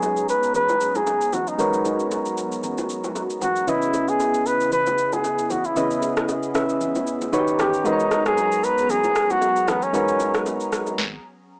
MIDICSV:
0, 0, Header, 1, 5, 480
1, 0, Start_track
1, 0, Tempo, 521739
1, 1464, Time_signature, 4, 2, 24, 8
1, 10670, End_track
2, 0, Start_track
2, 0, Title_t, "Muted trumpet"
2, 0, Program_c, 0, 59
2, 0, Note_on_c, 0, 68, 99
2, 268, Note_off_c, 0, 68, 0
2, 272, Note_on_c, 0, 71, 99
2, 491, Note_off_c, 0, 71, 0
2, 513, Note_on_c, 0, 71, 106
2, 885, Note_on_c, 0, 68, 96
2, 899, Note_off_c, 0, 71, 0
2, 1232, Note_on_c, 0, 66, 84
2, 1246, Note_off_c, 0, 68, 0
2, 1364, Note_on_c, 0, 63, 79
2, 1378, Note_off_c, 0, 66, 0
2, 1840, Note_off_c, 0, 63, 0
2, 3152, Note_on_c, 0, 66, 84
2, 3391, Note_on_c, 0, 64, 91
2, 3405, Note_off_c, 0, 66, 0
2, 3763, Note_on_c, 0, 68, 96
2, 3776, Note_off_c, 0, 64, 0
2, 4110, Note_on_c, 0, 71, 97
2, 4124, Note_off_c, 0, 68, 0
2, 4344, Note_off_c, 0, 71, 0
2, 4350, Note_on_c, 0, 71, 103
2, 4722, Note_on_c, 0, 68, 91
2, 4735, Note_off_c, 0, 71, 0
2, 5070, Note_on_c, 0, 66, 84
2, 5084, Note_off_c, 0, 68, 0
2, 5204, Note_on_c, 0, 64, 76
2, 5217, Note_off_c, 0, 66, 0
2, 5680, Note_off_c, 0, 64, 0
2, 6992, Note_on_c, 0, 67, 89
2, 7231, Note_on_c, 0, 63, 98
2, 7245, Note_off_c, 0, 67, 0
2, 7600, Note_off_c, 0, 63, 0
2, 7603, Note_on_c, 0, 68, 105
2, 7951, Note_on_c, 0, 71, 98
2, 7965, Note_off_c, 0, 68, 0
2, 8191, Note_on_c, 0, 68, 101
2, 8205, Note_off_c, 0, 71, 0
2, 8564, Note_on_c, 0, 66, 95
2, 8578, Note_off_c, 0, 68, 0
2, 8911, Note_on_c, 0, 59, 84
2, 8925, Note_off_c, 0, 66, 0
2, 9044, Note_on_c, 0, 61, 77
2, 9057, Note_off_c, 0, 59, 0
2, 9520, Note_off_c, 0, 61, 0
2, 10670, End_track
3, 0, Start_track
3, 0, Title_t, "Synth keys"
3, 0, Program_c, 1, 88
3, 0, Control_c, 1, 64, 127
3, 0, Note_on_c, 1, 56, 64
3, 0, Note_on_c, 1, 63, 58
3, 0, Note_on_c, 1, 66, 57
3, 0, Note_on_c, 1, 68, 57
3, 0, Note_on_c, 1, 71, 57
3, 0, Note_on_c, 1, 73, 70
3, 1422, Note_off_c, 1, 56, 0
3, 1424, Note_off_c, 1, 63, 0
3, 1426, Note_off_c, 1, 66, 0
3, 1429, Note_off_c, 1, 68, 0
3, 1431, Note_off_c, 1, 71, 0
3, 1433, Note_off_c, 1, 73, 0
3, 1453, Note_on_c, 1, 56, 62
3, 1457, Note_on_c, 1, 63, 56
3, 1461, Note_on_c, 1, 66, 55
3, 1466, Note_on_c, 1, 70, 58
3, 1470, Note_on_c, 1, 71, 59
3, 1475, Note_on_c, 1, 73, 68
3, 3342, Note_off_c, 1, 56, 0
3, 3344, Note_off_c, 1, 63, 0
3, 3346, Note_off_c, 1, 66, 0
3, 3348, Note_off_c, 1, 70, 0
3, 3350, Note_off_c, 1, 71, 0
3, 3352, Note_off_c, 1, 73, 0
3, 3373, Note_on_c, 1, 49, 65
3, 3379, Note_on_c, 1, 61, 57
3, 3384, Note_on_c, 1, 64, 56
3, 3390, Note_on_c, 1, 71, 58
3, 3395, Note_on_c, 1, 75, 71
3, 3397, Control_c, 1, 64, 0
3, 3558, Control_c, 1, 64, 127
3, 5262, Note_off_c, 1, 49, 0
3, 5265, Note_off_c, 1, 61, 0
3, 5267, Note_off_c, 1, 64, 0
3, 5270, Note_off_c, 1, 71, 0
3, 5273, Note_off_c, 1, 75, 0
3, 5299, Note_on_c, 1, 49, 64
3, 5301, Note_on_c, 1, 61, 59
3, 5305, Note_on_c, 1, 64, 59
3, 5307, Note_on_c, 1, 71, 55
3, 5310, Note_on_c, 1, 75, 72
3, 6008, Note_off_c, 1, 49, 0
3, 6010, Note_off_c, 1, 61, 0
3, 6013, Note_off_c, 1, 64, 0
3, 6016, Note_off_c, 1, 71, 0
3, 6019, Note_on_c, 1, 49, 57
3, 6021, Note_on_c, 1, 61, 54
3, 6024, Note_on_c, 1, 64, 56
3, 6027, Note_off_c, 1, 75, 0
3, 6027, Note_on_c, 1, 71, 55
3, 6029, Note_on_c, 1, 76, 67
3, 6735, Note_off_c, 1, 71, 0
3, 6738, Note_on_c, 1, 51, 74
3, 6741, Note_off_c, 1, 49, 0
3, 6741, Note_on_c, 1, 63, 73
3, 6742, Note_off_c, 1, 61, 0
3, 6744, Note_off_c, 1, 64, 0
3, 6744, Note_on_c, 1, 66, 56
3, 6746, Note_on_c, 1, 71, 73
3, 6747, Note_off_c, 1, 76, 0
3, 6749, Note_on_c, 1, 73, 84
3, 6754, Control_c, 1, 64, 0
3, 6801, Note_on_c, 1, 67, 73
3, 6807, Note_off_c, 1, 66, 0
3, 6917, Control_c, 1, 64, 127
3, 7206, Note_off_c, 1, 63, 0
3, 7213, Note_on_c, 1, 56, 63
3, 7217, Note_on_c, 1, 63, 60
3, 7220, Note_off_c, 1, 71, 0
3, 7221, Note_off_c, 1, 51, 0
3, 7222, Note_on_c, 1, 66, 59
3, 7226, Note_on_c, 1, 70, 59
3, 7227, Note_off_c, 1, 73, 0
3, 7231, Note_on_c, 1, 71, 57
3, 7235, Control_c, 1, 64, 0
3, 7235, Note_on_c, 1, 72, 58
3, 7253, Note_off_c, 1, 67, 0
3, 7293, Note_off_c, 1, 72, 0
3, 7293, Note_on_c, 1, 73, 70
3, 7378, Control_c, 1, 64, 127
3, 9101, Note_off_c, 1, 56, 0
3, 9104, Note_off_c, 1, 63, 0
3, 9106, Note_off_c, 1, 66, 0
3, 9108, Note_off_c, 1, 70, 0
3, 9110, Note_off_c, 1, 71, 0
3, 9133, Note_on_c, 1, 56, 61
3, 9137, Note_on_c, 1, 63, 59
3, 9142, Note_off_c, 1, 73, 0
3, 9142, Note_on_c, 1, 66, 59
3, 9146, Note_on_c, 1, 70, 60
3, 9151, Note_on_c, 1, 71, 59
3, 9155, Note_on_c, 1, 73, 70
3, 10079, Note_off_c, 1, 56, 0
3, 10081, Note_off_c, 1, 63, 0
3, 10084, Note_off_c, 1, 66, 0
3, 10086, Note_off_c, 1, 70, 0
3, 10088, Note_off_c, 1, 71, 0
3, 10090, Note_off_c, 1, 73, 0
3, 10117, Control_c, 1, 64, 0
3, 10670, End_track
4, 0, Start_track
4, 0, Title_t, "Analog synth pad"
4, 0, Program_c, 2, 89
4, 0, Note_on_c, 2, 54, 73
4, 0, Note_on_c, 2, 59, 68
4, 0, Note_on_c, 2, 61, 70
4, 0, Note_on_c, 2, 68, 67
4, 0, Note_on_c, 2, 82, 85
4, 1445, Note_off_c, 2, 68, 0
4, 1464, Note_on_c, 2, 66, 65
4, 3347, Note_off_c, 2, 61, 0
4, 3347, Note_off_c, 2, 82, 0
4, 3348, Note_off_c, 2, 54, 0
4, 3365, Note_off_c, 2, 66, 0
4, 3384, Note_on_c, 2, 49, 74
4, 3384, Note_on_c, 2, 61, 62
4, 3384, Note_on_c, 2, 64, 64
4, 3384, Note_on_c, 2, 68, 78
4, 6710, Note_off_c, 2, 64, 0
4, 6710, Note_off_c, 2, 68, 0
4, 6742, Note_on_c, 2, 82, 84
4, 6743, Note_on_c, 2, 67, 66
4, 7187, Note_off_c, 2, 49, 0
4, 7188, Note_off_c, 2, 59, 0
4, 7219, Note_off_c, 2, 67, 0
4, 7223, Note_on_c, 2, 54, 70
4, 7223, Note_on_c, 2, 59, 65
4, 7223, Note_on_c, 2, 68, 66
4, 10067, Note_off_c, 2, 61, 0
4, 10070, Note_off_c, 2, 82, 0
4, 10075, Note_off_c, 2, 54, 0
4, 10075, Note_off_c, 2, 59, 0
4, 10075, Note_off_c, 2, 68, 0
4, 10670, End_track
5, 0, Start_track
5, 0, Title_t, "Drums"
5, 23, Note_on_c, 9, 82, 65
5, 25, Note_on_c, 9, 60, 66
5, 115, Note_off_c, 9, 82, 0
5, 117, Note_off_c, 9, 60, 0
5, 154, Note_on_c, 9, 82, 52
5, 246, Note_off_c, 9, 82, 0
5, 265, Note_on_c, 9, 82, 89
5, 357, Note_off_c, 9, 82, 0
5, 396, Note_on_c, 9, 82, 49
5, 488, Note_off_c, 9, 82, 0
5, 500, Note_on_c, 9, 64, 61
5, 503, Note_on_c, 9, 82, 78
5, 592, Note_off_c, 9, 64, 0
5, 595, Note_off_c, 9, 82, 0
5, 635, Note_on_c, 9, 82, 48
5, 641, Note_on_c, 9, 61, 72
5, 727, Note_off_c, 9, 82, 0
5, 733, Note_off_c, 9, 61, 0
5, 743, Note_on_c, 9, 82, 77
5, 835, Note_off_c, 9, 82, 0
5, 876, Note_on_c, 9, 82, 52
5, 879, Note_on_c, 9, 61, 65
5, 968, Note_off_c, 9, 82, 0
5, 971, Note_off_c, 9, 61, 0
5, 983, Note_on_c, 9, 60, 65
5, 983, Note_on_c, 9, 82, 60
5, 1075, Note_off_c, 9, 60, 0
5, 1075, Note_off_c, 9, 82, 0
5, 1116, Note_on_c, 9, 82, 54
5, 1208, Note_off_c, 9, 82, 0
5, 1222, Note_on_c, 9, 61, 66
5, 1222, Note_on_c, 9, 64, 67
5, 1224, Note_on_c, 9, 82, 80
5, 1314, Note_off_c, 9, 61, 0
5, 1314, Note_off_c, 9, 64, 0
5, 1316, Note_off_c, 9, 82, 0
5, 1355, Note_on_c, 9, 82, 47
5, 1447, Note_off_c, 9, 82, 0
5, 1463, Note_on_c, 9, 82, 80
5, 1467, Note_on_c, 9, 64, 74
5, 1555, Note_off_c, 9, 82, 0
5, 1559, Note_off_c, 9, 64, 0
5, 1595, Note_on_c, 9, 82, 50
5, 1687, Note_off_c, 9, 82, 0
5, 1701, Note_on_c, 9, 60, 49
5, 1701, Note_on_c, 9, 61, 49
5, 1703, Note_on_c, 9, 82, 83
5, 1793, Note_off_c, 9, 60, 0
5, 1793, Note_off_c, 9, 61, 0
5, 1795, Note_off_c, 9, 82, 0
5, 1835, Note_on_c, 9, 82, 43
5, 1927, Note_off_c, 9, 82, 0
5, 1944, Note_on_c, 9, 82, 70
5, 1945, Note_on_c, 9, 60, 68
5, 2036, Note_off_c, 9, 82, 0
5, 2037, Note_off_c, 9, 60, 0
5, 2075, Note_on_c, 9, 82, 53
5, 2167, Note_off_c, 9, 82, 0
5, 2186, Note_on_c, 9, 82, 85
5, 2278, Note_off_c, 9, 82, 0
5, 2317, Note_on_c, 9, 82, 51
5, 2409, Note_off_c, 9, 82, 0
5, 2420, Note_on_c, 9, 64, 61
5, 2424, Note_on_c, 9, 82, 78
5, 2512, Note_off_c, 9, 64, 0
5, 2516, Note_off_c, 9, 82, 0
5, 2555, Note_on_c, 9, 82, 46
5, 2560, Note_on_c, 9, 61, 71
5, 2647, Note_off_c, 9, 82, 0
5, 2652, Note_off_c, 9, 61, 0
5, 2663, Note_on_c, 9, 82, 79
5, 2755, Note_off_c, 9, 82, 0
5, 2796, Note_on_c, 9, 82, 52
5, 2798, Note_on_c, 9, 61, 63
5, 2888, Note_off_c, 9, 82, 0
5, 2890, Note_off_c, 9, 61, 0
5, 2901, Note_on_c, 9, 60, 64
5, 2904, Note_on_c, 9, 82, 62
5, 2993, Note_off_c, 9, 60, 0
5, 2996, Note_off_c, 9, 82, 0
5, 3036, Note_on_c, 9, 82, 55
5, 3128, Note_off_c, 9, 82, 0
5, 3141, Note_on_c, 9, 61, 66
5, 3141, Note_on_c, 9, 64, 68
5, 3144, Note_on_c, 9, 82, 81
5, 3233, Note_off_c, 9, 61, 0
5, 3233, Note_off_c, 9, 64, 0
5, 3236, Note_off_c, 9, 82, 0
5, 3274, Note_on_c, 9, 82, 48
5, 3366, Note_off_c, 9, 82, 0
5, 3383, Note_on_c, 9, 82, 75
5, 3388, Note_on_c, 9, 64, 74
5, 3475, Note_off_c, 9, 82, 0
5, 3480, Note_off_c, 9, 64, 0
5, 3515, Note_on_c, 9, 82, 50
5, 3607, Note_off_c, 9, 82, 0
5, 3621, Note_on_c, 9, 60, 49
5, 3621, Note_on_c, 9, 61, 50
5, 3622, Note_on_c, 9, 82, 78
5, 3713, Note_off_c, 9, 60, 0
5, 3713, Note_off_c, 9, 61, 0
5, 3714, Note_off_c, 9, 82, 0
5, 3755, Note_on_c, 9, 82, 44
5, 3847, Note_off_c, 9, 82, 0
5, 3863, Note_on_c, 9, 82, 67
5, 3864, Note_on_c, 9, 60, 67
5, 3955, Note_off_c, 9, 82, 0
5, 3956, Note_off_c, 9, 60, 0
5, 3995, Note_on_c, 9, 82, 53
5, 4087, Note_off_c, 9, 82, 0
5, 4105, Note_on_c, 9, 82, 84
5, 4197, Note_off_c, 9, 82, 0
5, 4236, Note_on_c, 9, 82, 48
5, 4328, Note_off_c, 9, 82, 0
5, 4341, Note_on_c, 9, 64, 64
5, 4343, Note_on_c, 9, 82, 78
5, 4433, Note_off_c, 9, 64, 0
5, 4435, Note_off_c, 9, 82, 0
5, 4475, Note_on_c, 9, 82, 47
5, 4481, Note_on_c, 9, 61, 72
5, 4567, Note_off_c, 9, 82, 0
5, 4573, Note_off_c, 9, 61, 0
5, 4583, Note_on_c, 9, 82, 73
5, 4675, Note_off_c, 9, 82, 0
5, 4716, Note_on_c, 9, 82, 52
5, 4719, Note_on_c, 9, 61, 67
5, 4808, Note_off_c, 9, 82, 0
5, 4811, Note_off_c, 9, 61, 0
5, 4823, Note_on_c, 9, 60, 65
5, 4824, Note_on_c, 9, 82, 62
5, 4915, Note_off_c, 9, 60, 0
5, 4916, Note_off_c, 9, 82, 0
5, 4956, Note_on_c, 9, 82, 53
5, 5048, Note_off_c, 9, 82, 0
5, 5062, Note_on_c, 9, 61, 68
5, 5062, Note_on_c, 9, 64, 66
5, 5064, Note_on_c, 9, 82, 85
5, 5154, Note_off_c, 9, 61, 0
5, 5154, Note_off_c, 9, 64, 0
5, 5156, Note_off_c, 9, 82, 0
5, 5194, Note_on_c, 9, 82, 49
5, 5286, Note_off_c, 9, 82, 0
5, 5304, Note_on_c, 9, 82, 81
5, 5308, Note_on_c, 9, 64, 75
5, 5396, Note_off_c, 9, 82, 0
5, 5400, Note_off_c, 9, 64, 0
5, 5436, Note_on_c, 9, 82, 51
5, 5528, Note_off_c, 9, 82, 0
5, 5542, Note_on_c, 9, 60, 49
5, 5542, Note_on_c, 9, 61, 49
5, 5543, Note_on_c, 9, 82, 78
5, 5634, Note_off_c, 9, 60, 0
5, 5634, Note_off_c, 9, 61, 0
5, 5635, Note_off_c, 9, 82, 0
5, 5676, Note_on_c, 9, 82, 46
5, 5679, Note_on_c, 9, 37, 87
5, 5768, Note_off_c, 9, 82, 0
5, 5771, Note_off_c, 9, 37, 0
5, 5785, Note_on_c, 9, 60, 69
5, 5785, Note_on_c, 9, 82, 69
5, 5877, Note_off_c, 9, 60, 0
5, 5877, Note_off_c, 9, 82, 0
5, 5916, Note_on_c, 9, 82, 52
5, 6008, Note_off_c, 9, 82, 0
5, 6026, Note_on_c, 9, 82, 86
5, 6028, Note_on_c, 9, 37, 83
5, 6118, Note_off_c, 9, 82, 0
5, 6120, Note_off_c, 9, 37, 0
5, 6157, Note_on_c, 9, 82, 51
5, 6249, Note_off_c, 9, 82, 0
5, 6260, Note_on_c, 9, 64, 61
5, 6265, Note_on_c, 9, 82, 80
5, 6352, Note_off_c, 9, 64, 0
5, 6357, Note_off_c, 9, 82, 0
5, 6396, Note_on_c, 9, 82, 46
5, 6401, Note_on_c, 9, 61, 73
5, 6488, Note_off_c, 9, 82, 0
5, 6493, Note_off_c, 9, 61, 0
5, 6504, Note_on_c, 9, 82, 78
5, 6596, Note_off_c, 9, 82, 0
5, 6637, Note_on_c, 9, 82, 54
5, 6639, Note_on_c, 9, 61, 65
5, 6729, Note_off_c, 9, 82, 0
5, 6731, Note_off_c, 9, 61, 0
5, 6742, Note_on_c, 9, 60, 65
5, 6744, Note_on_c, 9, 82, 64
5, 6834, Note_off_c, 9, 60, 0
5, 6836, Note_off_c, 9, 82, 0
5, 6877, Note_on_c, 9, 82, 52
5, 6969, Note_off_c, 9, 82, 0
5, 6982, Note_on_c, 9, 61, 70
5, 6982, Note_on_c, 9, 64, 68
5, 6985, Note_on_c, 9, 82, 87
5, 6988, Note_on_c, 9, 37, 102
5, 7074, Note_off_c, 9, 61, 0
5, 7074, Note_off_c, 9, 64, 0
5, 7077, Note_off_c, 9, 82, 0
5, 7080, Note_off_c, 9, 37, 0
5, 7116, Note_on_c, 9, 82, 51
5, 7208, Note_off_c, 9, 82, 0
5, 7225, Note_on_c, 9, 82, 77
5, 7228, Note_on_c, 9, 64, 76
5, 7317, Note_off_c, 9, 82, 0
5, 7320, Note_off_c, 9, 64, 0
5, 7357, Note_on_c, 9, 82, 49
5, 7449, Note_off_c, 9, 82, 0
5, 7460, Note_on_c, 9, 60, 50
5, 7460, Note_on_c, 9, 61, 49
5, 7464, Note_on_c, 9, 37, 90
5, 7464, Note_on_c, 9, 82, 78
5, 7552, Note_off_c, 9, 60, 0
5, 7552, Note_off_c, 9, 61, 0
5, 7556, Note_off_c, 9, 37, 0
5, 7556, Note_off_c, 9, 82, 0
5, 7596, Note_on_c, 9, 82, 45
5, 7599, Note_on_c, 9, 37, 85
5, 7688, Note_off_c, 9, 82, 0
5, 7691, Note_off_c, 9, 37, 0
5, 7704, Note_on_c, 9, 60, 69
5, 7705, Note_on_c, 9, 82, 68
5, 7796, Note_off_c, 9, 60, 0
5, 7797, Note_off_c, 9, 82, 0
5, 7836, Note_on_c, 9, 82, 54
5, 7928, Note_off_c, 9, 82, 0
5, 7946, Note_on_c, 9, 82, 86
5, 8038, Note_off_c, 9, 82, 0
5, 8077, Note_on_c, 9, 82, 50
5, 8169, Note_off_c, 9, 82, 0
5, 8180, Note_on_c, 9, 64, 62
5, 8184, Note_on_c, 9, 82, 85
5, 8272, Note_off_c, 9, 64, 0
5, 8276, Note_off_c, 9, 82, 0
5, 8315, Note_on_c, 9, 82, 49
5, 8321, Note_on_c, 9, 61, 76
5, 8407, Note_off_c, 9, 82, 0
5, 8413, Note_off_c, 9, 61, 0
5, 8423, Note_on_c, 9, 82, 80
5, 8425, Note_on_c, 9, 37, 85
5, 8515, Note_off_c, 9, 82, 0
5, 8517, Note_off_c, 9, 37, 0
5, 8556, Note_on_c, 9, 82, 50
5, 8558, Note_on_c, 9, 61, 66
5, 8648, Note_off_c, 9, 82, 0
5, 8650, Note_off_c, 9, 61, 0
5, 8661, Note_on_c, 9, 60, 62
5, 8664, Note_on_c, 9, 82, 61
5, 8753, Note_off_c, 9, 60, 0
5, 8756, Note_off_c, 9, 82, 0
5, 8796, Note_on_c, 9, 82, 55
5, 8888, Note_off_c, 9, 82, 0
5, 8902, Note_on_c, 9, 61, 70
5, 8902, Note_on_c, 9, 64, 69
5, 8904, Note_on_c, 9, 82, 84
5, 8907, Note_on_c, 9, 37, 95
5, 8994, Note_off_c, 9, 61, 0
5, 8994, Note_off_c, 9, 64, 0
5, 8996, Note_off_c, 9, 82, 0
5, 8999, Note_off_c, 9, 37, 0
5, 9035, Note_on_c, 9, 82, 46
5, 9127, Note_off_c, 9, 82, 0
5, 9144, Note_on_c, 9, 82, 79
5, 9147, Note_on_c, 9, 64, 80
5, 9236, Note_off_c, 9, 82, 0
5, 9239, Note_off_c, 9, 64, 0
5, 9275, Note_on_c, 9, 82, 52
5, 9367, Note_off_c, 9, 82, 0
5, 9379, Note_on_c, 9, 60, 50
5, 9379, Note_on_c, 9, 61, 51
5, 9383, Note_on_c, 9, 82, 85
5, 9471, Note_off_c, 9, 60, 0
5, 9471, Note_off_c, 9, 61, 0
5, 9475, Note_off_c, 9, 82, 0
5, 9515, Note_on_c, 9, 82, 45
5, 9518, Note_on_c, 9, 37, 84
5, 9607, Note_off_c, 9, 82, 0
5, 9610, Note_off_c, 9, 37, 0
5, 9623, Note_on_c, 9, 82, 67
5, 9624, Note_on_c, 9, 60, 67
5, 9715, Note_off_c, 9, 82, 0
5, 9716, Note_off_c, 9, 60, 0
5, 9755, Note_on_c, 9, 82, 55
5, 9847, Note_off_c, 9, 82, 0
5, 9865, Note_on_c, 9, 82, 88
5, 9867, Note_on_c, 9, 37, 81
5, 9957, Note_off_c, 9, 82, 0
5, 9959, Note_off_c, 9, 37, 0
5, 9996, Note_on_c, 9, 82, 47
5, 9999, Note_on_c, 9, 60, 48
5, 10088, Note_off_c, 9, 82, 0
5, 10091, Note_off_c, 9, 60, 0
5, 10103, Note_on_c, 9, 36, 99
5, 10103, Note_on_c, 9, 38, 87
5, 10195, Note_off_c, 9, 36, 0
5, 10195, Note_off_c, 9, 38, 0
5, 10670, End_track
0, 0, End_of_file